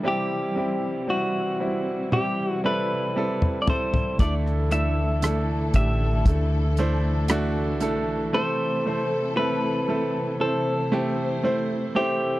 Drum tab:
HH |----------------|x-x-x-x-x-x-x-x-|----------------|
SD |----------------|-r--r-------r---|----------------|
T1 |--------o-------|----------------|----------------|
T2 |-------------o--|----------------|----------------|
FT |--------------oo|----------------|----------------|
BD |----------------|o-----o-o-------|----------------|